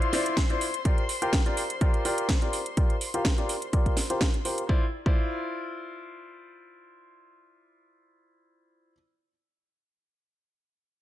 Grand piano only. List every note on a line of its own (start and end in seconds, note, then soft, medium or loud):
0.13 0.37 E4 medium
0.13 0.37 F4 medium
0.13 0.37 C5 medium
0.13 0.37 D5 loud
0.50 0.64 E4 medium
0.50 0.64 F4 medium
0.50 0.64 C5 medium
0.50 0.64 D5 medium
0.85 1.01 F4 medium
0.85 1.01 G4 medium
0.85 1.01 A#4 medium
0.85 1.01 D5 medium
1.22 1.36 F4 medium
1.22 1.36 G4 medium
1.22 1.36 A#4 medium
1.22 1.36 G5 medium
1.46 1.60 F4 medium
1.46 1.60 G4 medium
1.46 1.60 A#4 medium
1.46 1.60 D5 medium
1.81 2.02 F4 medium
1.81 2.02 G4 medium
1.81 2.02 A#4 medium
1.81 2.02 D5 loud
2.05 2.29 F4 medium
2.05 2.29 G4 medium
2.05 2.29 A#4 medium
2.05 2.29 D5 loud
2.42 2.56 F4 medium
2.42 2.56 G4 medium
2.42 2.56 A#4 medium
2.42 2.56 D5 medium
2.77 2.93 F4 medium
2.77 2.93 G4 medium
2.77 2.93 A#4 medium
2.77 2.93 D5 medium
3.14 3.28 F4 medium
3.14 3.28 G4 medium
3.14 3.28 A#4 medium
3.14 3.28 F5 medium
3.38 3.52 F4 medium
3.38 3.52 G4 medium
3.38 3.52 A#4 medium
3.38 3.52 D5 medium
3.73 3.94 F4 medium
3.73 3.94 G4 medium
3.73 3.94 A#4 medium
3.73 3.94 D5 loud
4.10 4.24 F4 medium
4.10 4.24 G4 medium
4.10 4.24 A#4 medium
4.10 4.24 C5 medium
4.45 4.61 F4 medium
4.45 4.61 G4 medium
4.45 4.61 A#4 medium
4.45 4.61 C5 medium
4.69 4.83 E4 medium
4.69 4.83 F4 medium
4.69 4.83 C5 medium
4.69 4.83 D5 medium
5.06 8.92 E4 medium
5.06 8.92 F4 medium
5.06 8.92 C5 medium
5.06 8.92 D5 medium